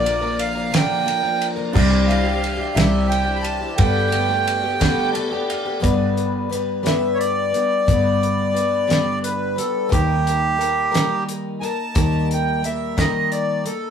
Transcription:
Already playing: picked electric bass A#1, tonewheel organ D4 F4 A#4 D5, grand piano F4 A#4 D5, accordion D5
0.03 twelve-string acoustic guitar F3 A#3 D4 A#4, ride
0.21 twelve-string acoustic guitar F3 A#3 D4 A#4
0.39 accordion F5, ride
0.55 twelve-string acoustic guitar F3 A#3 D4 A#4
0.71 twelve-string acoustic guitar A#2 D3 F3 A#3 D4 A#4, snare, ride
0.76 accordion G5
1.04 twelve-string acoustic guitar F3 A#3 D4 A#4, ride
1.23 twelve-string acoustic guitar F3 A#3 D4 A#4
1.41 ride
1.56 twelve-string acoustic guitar F3 A#3 D4 A#4
1.72 picked electric bass C2, twelve-string acoustic guitar C3 G3 D4 E4 G4, tonewheel organ E3 G4 C5 D5, grand piano D4 C5 D5, kick, crash
2.07 twelve-string acoustic guitar G3 D4 E4 G4, accordion F5, ride
2.23 twelve-string acoustic guitar D4 G4
2.44 ride
2.57 twelve-string acoustic guitar D4 E4 G4
2.74 picked electric bass C2, twelve-string acoustic guitar C3 G3 D4 E4 G4, accordion E5, snare, ride
3.07 twelve-string acoustic guitar G3 D4 E4 G4, accordion G5
3.12 ride
3.26 twelve-string acoustic guitar D4 E4 G4
3.35 accordion B5
3.42 accordion A5, ride
3.59 twelve-string acoustic guitar D4 E4 G4
3.75 picked electric bass G1, twelve-string acoustic guitar G2 D3 A3 B3 D4 G4, grand piano G4 A4 B4, accordion G5, kick, ride
3.80 tonewheel organ G4 A4 B4 D5
4.10 twelve-string acoustic guitar A3 B3 D4 G4, ride
4.28 twelve-string acoustic guitar A3 B3 D4 G4
4.47 ride
4.64 twelve-string acoustic guitar A3 B3 D4 G4
4.79 twelve-string acoustic guitar G2 D3 A3 B3 D4 G4, kick, snare, ride
5.13 twelve-string acoustic guitar A3 B3 D4 G4, grand piano A5, ride
5.31 twelve-string acoustic guitar A3 B3 D4 G4, grand piano G5
5.50 grand piano F5, ride
5.65 twelve-string acoustic guitar A3 B3 D4 G4
5.80 picked electric bass G1, twelve-string acoustic guitar G2 D3 G3 B3 D4 B4, kick, closed hi-hat
6.17 closed hi-hat
6.49 twelve-string acoustic guitar G3 B3 D4 B4, closed hi-hat
6.83 twelve-string acoustic guitar G2 D3 G3 B3 D4 B4, accordion E5, snare, closed hi-hat
7.14 accordion C#5
7.19 accordion D5, closed hi-hat
7.52 twelve-string acoustic guitar G3 B3 D4 B4, closed hi-hat
7.86 picked electric bass G1, twelve-string acoustic guitar G2 D3 G3 B3 D4 B4, kick, closed hi-hat
8.23 closed hi-hat
8.53 twelve-string acoustic guitar G3 B3 D4 B4, closed hi-hat
8.87 twelve-string acoustic guitar G2 D3 G3 B3 D4 B4, snare, closed hi-hat
9.24 accordion B4, closed hi-hat
9.56 twelve-string acoustic guitar G3 B3 D4 B4, accordion A4, closed hi-hat
9.89 picked electric bass D#2, twelve-string acoustic guitar D#3 G3 A#3 D#4 A#4, accordion G4, kick, closed hi-hat
10.27 closed hi-hat
10.56 twelve-string acoustic guitar G3 A#3 D#4 A#4
10.61 closed hi-hat
10.92 twelve-string acoustic guitar D#3 G3 A#3 D#4 A#4, snare, closed hi-hat
11.29 closed hi-hat
11.60 twelve-string acoustic guitar A#3 D#4 A#4, accordion G#5, closed hi-hat
11.64 accordion A5
11.94 picked electric bass D#2, twelve-string acoustic guitar D#3 G3 A#3 D#4 A#4, kick, closed hi-hat
12.31 accordion G5, closed hi-hat
12.62 twelve-string acoustic guitar G3 A#3 A#4, accordion E5, closed hi-hat
12.97 twelve-string acoustic guitar D#3 G3 A#3 D#4 A#4, accordion D#5, kick, snare, closed hi-hat
13.31 accordion D5, closed hi-hat
13.64 twelve-string acoustic guitar A#3 D#4, accordion A4, closed hi-hat

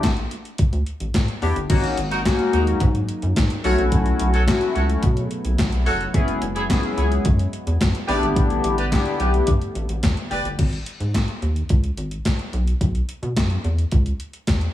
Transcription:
0.03 analog synth bass A1, kick, snare, clap, closed hi-hat
0.17 closed hi-hat
0.31 closed hi-hat
0.45 closed hi-hat
0.58 kick, closed hi-hat
0.72 analog synth bass D2, closed hi-hat
0.86 closed hi-hat
1.00 analog synth bass A1, closed hi-hat
1.14 analog synth bass A2, kick, snare, clap, closed hi-hat
1.28 closed hi-hat
1.42 analog synth bass E2, analog polysynth B3 D4 E4 G4, open hi-hat
1.56 analog synth bass G1, closed hi-hat
1.69 analog synth bass G#1, analog synth pad C#3 F#3 G#3 A#3 D#4, analog polysynth A#3 C#4 D#4 F#4, kick, closed hi-hat, crash
1.84 closed hi-hat
1.97 analog synth bass G#1, closed hi-hat
2.11 horn section D#4 F#4 A#4, closed hi-hat
2.25 analog polysynth A#3 C#4 D#4 F#4, kick, snare, clap, closed hi-hat
2.39 closed hi-hat
2.53 analog synth bass D#2, horn section D#4 F#4 A#4, closed hi-hat
2.67 closed hi-hat
2.80 analog synth bass G#2, kick, closed hi-hat
2.95 closed hi-hat
3.09 closed hi-hat
3.22 analog synth bass F#2, closed hi-hat
3.36 analog synth bass G#2, kick, snare, clap, closed hi-hat
3.50 closed hi-hat
3.64 analog synth bass B1, analog synth pad F#3 A3 B3 E4, analog polysynth A3 C#4 E4 F#4, horn section F#4 A4 C#5, open hi-hat
3.78 analog synth bass A#1, closed hi-hat
3.92 analog synth bass B1, kick, closed hi-hat
4.06 closed hi-hat
4.20 analog synth bass B1, closed hi-hat
4.33 horn section F#4 A4 C#5, closed hi-hat
4.47 analog polysynth A3 C#4 E4 F#4, kick, snare, clap, closed hi-hat
4.61 closed hi-hat
4.75 analog synth bass C#2, horn section F#4 A4 C#5, closed hi-hat
4.90 closed hi-hat
5.03 analog synth bass B2, kick, closed hi-hat
5.17 closed hi-hat
5.31 closed hi-hat
5.45 analog synth bass B1, closed hi-hat
5.58 analog synth bass B1, kick, snare, clap, closed hi-hat
5.72 closed hi-hat
5.86 analog synth bass F1, horn section F#4 A4 C#5, open hi-hat
6.01 closed hi-hat
6.14 analog synth bass F#1, analog synth pad G#3, analog polysynth B3 C#4 E4 G#4, kick, closed hi-hat
6.28 closed hi-hat
6.42 analog synth bass F#1, closed hi-hat
6.55 horn section E4 G#4 C#5, closed hi-hat
6.69 analog polysynth B3 C#4 E4 G#4, kick, snare, clap, closed hi-hat
6.83 closed hi-hat
6.97 analog synth bass C#2, horn section E4 G#4 C#5, closed hi-hat
7.12 closed hi-hat
7.25 analog synth bass F#2, kick, closed hi-hat
7.39 closed hi-hat
7.53 closed hi-hat
7.67 analog synth bass E2, closed hi-hat
7.81 analog synth bass F#2, kick, snare, clap, closed hi-hat
7.95 closed hi-hat
8.08 analog synth bass A1, analog synth pad D3 G3 A3 B3, analog polysynth B3 D4 E4 G4, horn section G4 B4 D5, open hi-hat
8.22 analog synth bass G#1, closed hi-hat
8.36 analog synth bass A1, kick, closed hi-hat
8.50 closed hi-hat
8.64 analog synth bass A1, closed hi-hat
8.78 horn section G4 B4 D5, closed hi-hat
8.91 analog polysynth B3 D4 E4 G4, kick, snare, clap, closed hi-hat
9.06 closed hi-hat
9.20 analog synth bass B1, horn section G4 B4 D5, closed hi-hat
9.34 closed hi-hat
9.47 analog synth bass G2, kick, closed hi-hat
9.61 closed hi-hat
9.75 analog synth bass A1, closed hi-hat
9.89 analog synth bass A1, closed hi-hat
10.03 analog synth bass E2, kick, snare, clap, closed hi-hat
10.17 closed hi-hat
10.31 analog synth bass F#1, horn section G4 B4 D5, open hi-hat
10.45 analog synth bass G1, closed hi-hat
10.59 analog synth bass G#1, kick, closed hi-hat, crash
10.73 closed hi-hat
10.86 closed hi-hat
11.00 analog synth bass G#2, closed hi-hat
11.14 kick, snare, clap, closed hi-hat
11.28 closed hi-hat
11.42 analog synth bass D#2, closed hi-hat
11.56 closed hi-hat
11.69 analog synth bass C#2, kick, closed hi-hat
11.84 closed hi-hat
11.97 analog synth bass G#1, closed hi-hat
12.11 closed hi-hat
12.25 kick, snare, clap, closed hi-hat
12.39 closed hi-hat
12.53 analog synth bass B1, closed hi-hat
12.67 closed hi-hat
12.81 analog synth bass B1, kick, closed hi-hat
12.95 closed hi-hat
13.09 closed hi-hat
13.22 analog synth bass B2, closed hi-hat
13.36 analog synth bass F#2, kick, snare, clap, closed hi-hat
13.50 closed hi-hat
13.64 analog synth bass E2, closed hi-hat
13.78 closed hi-hat
13.92 analog synth bass C#2, kick, closed hi-hat
14.06 closed hi-hat
14.20 closed hi-hat
14.33 closed hi-hat
14.47 analog synth bass E2, kick, snare, clap, closed hi-hat
14.61 closed hi-hat

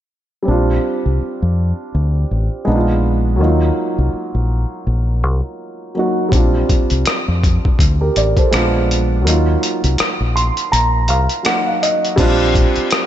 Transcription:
0.43 grand piano G3 C4
0.48 fingered electric bass A#1, grand piano D4 F4
1.06 fingered electric bass C2
1.21 muted fingered electric bass stroke
1.42 fingered electric bass F2
1.95 fingered electric bass D2
2.31 fingered electric bass A1
2.65 fingered electric bass A#1, grand piano G#3 B3 D4
2.69 grand piano D#4
2.75 grand piano F4
3.36 grand piano F#3 A#3
3.41 fingered electric bass D#2, grand piano D#4 F4
3.98 fingered electric bass C2
4.14 muted fingered electric bass stroke
4.35 fingered electric bass A#1
4.87 fingered electric bass A#1
5.23 fingered electric bass C2
5.95 grand piano F#3 A#3 D#4
5.99 grand piano F#4
6.29 fingered electric bass A#1, grand piano G3 C4, kick
6.33 grand piano D4, closed hi-hat
6.37 grand piano F4
6.69 kick, closed hi-hat
6.90 fingered electric bass C2, closed hi-hat
7.06 cross-stick, closed hi-hat
7.28 fingered electric bass F2
7.44 kick, closed hi-hat
7.65 kick
7.79 fingered electric bass D2, kick, closed hi-hat
8.01 grand piano G4 A#4
8.16 fingered electric bass A1, grand piano A#4 D5, closed hi-hat
8.37 grand piano A4 C5, kick, closed hi-hat
8.51 fingered electric bass A#1, grand piano G#3 B3 D4, cross-stick, closed hi-hat
8.55 grand piano F4
8.91 closed hi-hat
9.22 grand piano F#3 A#3
9.26 fingered electric bass D#2, grand piano D#4 F4, closed hi-hat
9.63 closed hi-hat
9.84 fingered electric bass C2, closed hi-hat
9.98 cross-stick, closed hi-hat
10.20 fingered electric bass A#1
10.36 grand piano C6, closed hi-hat
10.57 closed hi-hat
10.72 fingered electric bass A#1, grand piano A#5, closed hi-hat
11.08 fingered electric bass C2, grand piano F5, closed hi-hat
11.29 closed hi-hat
11.43 grand piano F#3 A#3 D#4 F#5, cross-stick, closed hi-hat
11.47 grand piano F#4
11.67 grand piano F5
11.83 grand piano D#5, closed hi-hat
12.05 closed hi-hat
12.16 fingered electric bass A#1, grand piano G3 C4 D4, kick, closed hi-hat, crash
12.20 grand piano F4
12.55 kick, closed hi-hat
12.76 muted fingered electric bass stroke, closed hi-hat
12.91 cross-stick, closed hi-hat

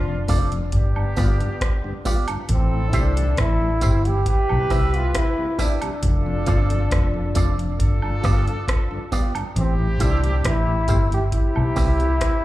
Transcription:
Already playing: fingered electric bass F1, horn section C4 D4 F4, trombone D4
0.08 tonewheel organ F2 C3
0.28 fingered electric bass F1, tonewheel organ A3 D4 F4, clean electric guitar C4 F4 A4 D5, kick, open hi-hat, tambourine
0.52 tonewheel organ F2 C3, closed hi-hat
0.72 fingered electric bass G1, horn section B3 D4 G4, kick, closed hi-hat
0.96 tonewheel organ G2 D3, high woodblock
1.16 fingered electric bass G1, tonewheel organ G3 B3 F4, clean electric guitar B3 F4 G4 D5, kick, cross-stick, open hi-hat, tambourine
1.40 tonewheel organ G2 D3, closed hi-hat
1.61 kick, cross-stick, closed hi-hat
1.84 tonewheel organ G2 D3
2.05 tonewheel organ G3 B3 F4, clean electric guitar B3 F4 G4 D5, kick, open hi-hat, tambourine
2.28 tonewheel organ G2 D3, closed hi-hat, high woodblock
2.49 fingered electric bass A1, horn section C4 E4 A4, kick, closed hi-hat
2.53 trombone C4
2.74 tonewheel organ A2 E3
2.90 trombone E4, clean electric guitar E4 G4, closed hi-hat, tambourine
2.94 fingered electric bass C2, tonewheel organ A3 C4 G4, trombone D4, clean electric guitar C5 E5, kick
3.17 tonewheel organ A2 E3, closed hi-hat
3.37 fingered electric bass A1, trombone E4, kick, cross-stick, closed hi-hat
3.61 tonewheel organ A2 E3
3.81 fingered electric bass G1, tonewheel organ A3 C4 G4, clean electric guitar E4 G4 C5 E5, kick, closed hi-hat, tambourine
4.05 tonewheel organ A2 E3, trombone G4, closed hi-hat
4.26 horn section E4 G4 B4, trombone G4, kick, closed hi-hat
4.49 fingered electric bass B1, tonewheel organ C3 G3, high woodblock
4.70 fingered electric bass C2, tonewheel organ B3 C4 E4, clean electric guitar E4 G4 B4 E5, kick, cross-stick, open hi-hat, tambourine
4.94 tonewheel organ C3 G3, trombone F4, closed hi-hat
5.14 trombone E4, kick, cross-stick, closed hi-hat
5.38 tonewheel organ C3 G3
5.59 tonewheel organ B3 C4 E4, trombone D4, clean electric guitar E4 G4 B4 E5, kick, open hi-hat, tambourine
5.81 tonewheel organ C3 G3, closed hi-hat, high woodblock
6.03 fingered electric bass F1, horn section D4 F4 A4, kick, closed hi-hat
6.26 tonewheel organ F2 C3
6.46 fingered electric bass G1, tonewheel organ A3 D4 F4, clean electric guitar C4 F4 A4 D5, kick, closed hi-hat, tambourine
6.70 tonewheel organ F2 C3, closed hi-hat
6.91 fingered electric bass F1, kick, cross-stick, closed hi-hat
7.14 tonewheel organ F2 C3
7.34 fingered electric bass F1, tonewheel organ A3 D4 F4, clean electric guitar C4 F4 A4 D5, kick, closed hi-hat, tambourine
7.58 tonewheel organ F2 C3, closed hi-hat
7.79 fingered electric bass G1, horn section D4 F4 A4, kick, closed hi-hat
8.02 tonewheel organ G2 D3, high woodblock
8.23 fingered electric bass G1, tonewheel organ G3 B3 F4, clean electric guitar B3 F4 G4 D5, kick, cross-stick, open hi-hat, tambourine
8.46 tonewheel organ G2 D3, closed hi-hat
8.68 kick, cross-stick, closed hi-hat
8.91 tonewheel organ G2 D3
9.12 tonewheel organ G3 B3 F4, clean electric guitar B3 F4 G4 D5, kick, open hi-hat, tambourine
9.35 tonewheel organ G2 D3, closed hi-hat, high woodblock
9.56 fingered electric bass A1, horn section C4 E4 G4, trombone C4, kick, closed hi-hat
9.79 tonewheel organ A2 E3
9.99 fingered electric bass C2, tonewheel organ A3 C4 G4, trombone D4, clean electric guitar E4 G4 C5 E5, kick, closed hi-hat, tambourine
10.23 tonewheel organ A2 E3, closed hi-hat
10.44 fingered electric bass A1, trombone E4, kick, cross-stick, closed hi-hat
10.67 tonewheel organ A2 E3
10.88 fingered electric bass G1, tonewheel organ A3 C4 G4, clean electric guitar E4 G4 C5 E5, kick, closed hi-hat, tambourine
11.11 tonewheel organ A2 E3, trombone G4, closed hi-hat
11.32 horn section C4 E4 G4, trombone E4, kick, closed hi-hat
11.55 fingered electric bass B1, tonewheel organ C3 G3, high woodblock
11.76 fingered electric bass C2, tonewheel organ B3 C4 E4, clean electric guitar C4 G4 B4 E5, kick, cross-stick, open hi-hat, tambourine
12.00 tonewheel organ C3 G3, closed hi-hat
12.21 kick, cross-stick, closed hi-hat

